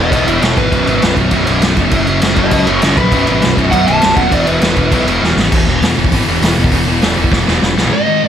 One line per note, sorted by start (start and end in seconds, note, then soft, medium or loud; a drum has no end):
0.00 0.11 E1 medium
0.00 0.14 E2 medium
0.00 0.14 B2 loud
0.00 0.14 E3 medium
0.00 0.10 B4 medium
0.00 0.11 D#5 loud
0.11 0.26 B1 medium
0.11 0.28 E2 medium
0.11 0.27 B2 medium
0.11 0.26 B4 medium
0.11 0.27 D#5 medium
0.11 kick loud
0.11 crash medium
0.16 0.27 E3 loud
0.26 0.41 E1 medium
0.26 0.41 E2 medium
0.26 0.42 B2 medium
0.26 0.42 E3 medium
0.26 0.41 E4 medium
0.26 0.42 C#5 medium
0.26 crash medium
0.42 0.56 E1 medium
0.42 0.58 E2 medium
0.42 0.57 B2 medium
0.42 0.57 E3 loud
0.42 0.56 E4 medium
0.42 0.57 C#5 medium
0.42 snare loud
0.42 crash medium
0.57 0.71 G#1 medium
0.57 0.72 E2 medium
0.57 0.72 B2 medium
0.57 0.71 E3 loud
0.57 1.16 B4 medium
0.57 kick medium
0.57 crash medium
0.72 0.86 B0 medium
0.72 0.89 B1 medium
0.72 0.88 F#2 medium
0.72 0.88 B2 loud
0.72 kick medium
0.72 crash medium
0.87 1.01 G#1 medium
0.87 1.01 B1 medium
0.87 1.03 F#2 medium
0.87 1.02 B2 medium
0.87 crash medium
1.02 1.16 B0 medium
1.02 1.18 B1 medium
1.02 1.17 F#2 medium
1.02 1.16 B2 medium
1.02 snare loud
1.02 crash medium
1.17 1.31 B0 medium
1.17 1.32 B1 medium
1.17 1.31 F#2 medium
1.17 1.32 B2 medium
1.17 kick medium
1.17 crash medium
1.31 1.46 B0 loud
1.31 1.48 B1 medium
1.31 1.47 F#2 medium
1.31 1.47 B2 medium
1.31 kick medium
1.31 crash medium
1.47 1.61 B0 medium
1.47 1.61 B1 medium
1.47 1.62 F#2 medium
1.47 1.62 B2 medium
1.47 crash medium
1.62 1.76 B0 loud
1.62 1.78 B1 medium
1.62 1.78 F#2 medium
1.62 1.77 B2 loud
1.62 snare loud
1.62 crash medium
1.77 1.91 F1 medium
1.77 1.92 B1 medium
1.77 1.92 F#2 medium
1.77 1.92 B2 medium
1.77 kick medium
1.77 crash medium
1.91 2.06 F#1 loud
1.91 2.08 F#2 loud
1.91 2.09 C#3 loud
1.91 2.09 F#3 loud
1.91 kick medium
1.91 crash medium
2.07 2.22 F#1 medium
2.07 2.21 F#2 medium
2.07 2.22 C#3 medium
2.07 2.23 F#3 medium
2.07 crash medium
2.22 2.36 F#1 medium
2.22 2.37 F#2 medium
2.22 2.37 C#3 medium
2.22 2.36 F#3 medium
2.22 snare loud
2.22 crash medium
2.36 2.51 F#1 loud
2.36 2.52 F#2 medium
2.36 2.52 C#3 medium
2.36 2.52 F#3 medium
2.36 2.51 F#4 medium
2.36 2.52 D#5 loud
2.36 kick medium
2.36 crash medium
2.51 2.66 C#2 medium
2.51 2.67 F#2 medium
2.51 2.66 C#3 medium
2.51 2.66 F#3 loud
2.51 2.66 F#4 medium
2.51 2.67 D#5 medium
2.51 kick loud
2.51 crash medium
2.67 2.81 F#1 loud
2.67 2.82 F#2 medium
2.67 2.82 C#3 medium
2.67 2.82 F#3 medium
2.67 2.81 A#4 medium
2.67 2.82 C#5 medium
2.67 crash medium
2.82 2.97 F#1 medium
2.82 2.97 F#2 medium
2.82 2.97 C#3 loud
2.82 2.96 F#3 loud
2.82 2.97 A#4 medium
2.82 2.97 C#5 medium
2.82 snare loud
2.82 crash medium
2.97 3.11 A#1 loud
2.97 3.11 F#2 medium
2.97 3.12 C#3 medium
2.97 3.12 F#3 medium
2.97 3.55 B4 medium
2.97 kick medium
2.97 crash medium
3.12 3.26 B0 loud
3.12 3.28 B1 loud
3.12 3.27 F#2 loud
3.12 3.27 B2 loud
3.12 kick loud
3.12 crash medium
3.27 3.41 G#1 medium
3.27 3.41 B1 medium
3.27 3.42 F#2 medium
3.27 3.43 B2 loud
3.27 crash medium
3.42 3.56 B0 medium
3.42 3.57 B1 medium
3.42 3.56 F#2 medium
3.42 3.56 B2 medium
3.42 snare loud
3.42 crash medium
3.57 3.71 B0 medium
3.57 3.71 B1 medium
3.57 3.72 F#2 loud
3.57 3.72 B2 loud
3.57 kick medium
3.57 crash medium
3.71 3.86 B0 loud
3.71 3.88 B1 medium
3.71 3.87 F#2 medium
3.71 3.87 B2 medium
3.71 3.86 F#5 loud
3.71 kick loud
3.71 crash medium
3.87 4.01 B0 medium
3.87 4.01 B1 medium
3.87 4.01 F#2 medium
3.87 4.02 B2 medium
3.87 4.16 A5 loud
3.87 crash medium
4.02 4.16 B0 loud
4.02 4.16 B1 medium
4.02 4.16 F#2 medium
4.02 4.16 B2 loud
4.02 snare loud
4.02 crash medium
4.16 4.31 D#1 loud
4.16 4.31 B1 medium
4.16 4.31 F#2 medium
4.16 4.31 B2 medium
4.16 4.31 F#5 loud
4.16 kick medium
4.16 crash medium
4.31 4.46 E1 loud
4.31 4.46 E2 medium
4.31 4.46 B2 loud
4.31 4.45 E3 loud
4.31 4.47 D5 medium
4.31 kick loud
4.31 crash medium
4.46 4.61 E1 medium
4.46 4.61 E2 medium
4.46 4.61 B2 medium
4.46 4.61 E3 medium
4.46 5.05 B4 loud
4.46 crash medium
4.61 4.76 E1 medium
4.61 4.77 E2 medium
4.61 4.76 B2 medium
4.61 4.75 E3 medium
4.61 snare loud
4.61 crash medium
4.76 4.91 E1 loud
4.76 4.91 E2 medium
4.76 4.91 B2 medium
4.76 4.92 E3 loud
4.76 kick medium
4.76 crash medium
4.92 5.06 B1 medium
4.92 5.08 E2 medium
4.92 5.08 B2 medium
4.92 5.07 E3 medium
4.92 kick loud
4.92 crash medium
5.06 5.21 E1 medium
5.06 5.21 E2 medium
5.06 5.22 B2 medium
5.06 5.22 E3 medium
5.06 crash medium
5.22 5.36 E1 medium
5.22 5.37 E2 medium
5.22 5.37 B2 loud
5.22 5.36 E3 loud
5.22 snare medium
5.36 5.51 G#1 medium
5.36 5.52 E2 medium
5.36 5.52 B2 medium
5.36 5.51 E3 loud
5.36 snare loud
5.52 5.64 E1 loud
5.52 5.70 E2 medium
5.52 5.68 B2 loud
5.52 5.69 E3 loud
5.52 kick loud
5.52 crash loud
5.67 5.79 E1 medium
5.67 5.84 E2 medium
5.67 5.84 B2 medium
5.67 5.85 E3 loud
5.82 5.94 E2 medium
5.82 5.98 E2 medium
5.82 5.98 B2 loud
5.82 5.97 E3 loud
5.82 snare loud
5.82 open hi-hat medium
5.97 6.09 E1 medium
5.97 6.13 E2 medium
5.97 6.13 B2 loud
5.97 6.14 E3 loud
6.04 kick loud
6.12 6.24 G#1 loud
6.12 6.29 E2 medium
6.12 6.28 B2 medium
6.12 6.28 E3 loud
6.12 kick loud
6.12 open hi-hat medium
6.26 6.39 E1 loud
6.26 6.43 B2 medium
6.26 6.43 E3 medium
6.30 6.42 E2 medium
6.42 6.54 E1 medium
6.42 6.58 E2 medium
6.42 6.57 B2 medium
6.42 6.58 E3 loud
6.42 snare loud
6.42 open hi-hat medium
6.58 6.69 E1 medium
6.58 6.73 E2 medium
6.58 6.72 B2 medium
6.58 6.74 E3 medium
6.64 kick loud
6.72 6.84 E1 loud
6.72 6.87 E2 medium
6.72 6.87 B2 loud
6.72 6.86 E3 loud
6.72 kick medium
6.72 open hi-hat medium
6.87 7.00 E1 medium
6.87 7.01 E2 medium
6.87 7.02 B2 medium
6.87 7.01 E3 medium
7.01 7.15 E1 medium
7.01 7.16 E2 medium
7.01 7.17 B2 medium
7.01 7.16 E3 medium
7.01 snare loud
7.01 open hi-hat medium
7.17 7.29 E1 loud
7.17 7.30 E2 medium
7.17 7.31 B2 loud
7.17 7.32 E3 loud
7.24 kick medium
7.31 7.44 E1 medium
7.31 7.46 E2 medium
7.31 7.47 B2 medium
7.31 7.45 E3 medium
7.31 kick loud
7.31 snare medium
7.47 7.60 E1 medium
7.47 7.62 E2 medium
7.47 7.62 B2 medium
7.47 7.63 E3 loud
7.47 snare medium
7.62 7.74 E1 loud
7.62 7.78 E2 medium
7.62 7.78 B2 loud
7.62 7.77 E3 loud
7.62 snare loud
7.76 7.89 A#1 medium
7.76 7.92 E2 medium
7.76 7.92 B2 medium
7.76 7.92 E3 medium
7.76 snare medium
7.93 8.06 G#2 loud
7.93 8.07 D#3 loud
7.93 8.05 G#3 loud
7.93 8.28 D#5 loud
8.07 8.22 G#2 medium
8.07 8.23 D#3 medium
8.07 8.23 G#3 loud
8.23 8.28 G#2 medium
8.23 8.28 D#3 medium
8.23 8.28 G#3 loud